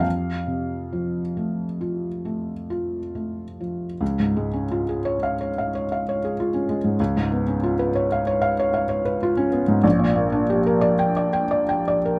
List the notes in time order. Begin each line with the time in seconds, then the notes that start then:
Already playing: F2
0.00 F5
0.47 C3
0.93 F3
1.37 A3
1.81 F4
2.25 A3
2.70 F4
3.15 A3
3.60 F3
4.01 C#2
4.20 G#2
4.37 G#3
4.53 C#4
4.71 F4
4.89 G#4
5.05 C#5
5.23 F5
5.41 C#5
5.58 F5
5.75 C#5
5.92 F5
6.09 C#5
6.24 G#4
6.40 F4
6.54 C#4
6.69 G#3
6.84 G#2
7.00 C#2
7.17 G#2
7.32 B3
7.48 C#4
7.63 F4
7.79 B4
7.95 C#5
8.12 F5
8.27 C#5
8.42 F5
8.59 C#5
8.74 F5
8.89 C#5
9.05 B4
9.23 F4
9.37 C#4
9.53 B3
9.68 G#2
9.84 A#1
9.99 A#2
10.15 A#3
10.32 D4
10.50 G4
10.66 A#4
10.81 D5
10.99 G5
11.17 D5
11.33 G5
11.51 D5
11.69 G5
11.88 D5
12.05 A#4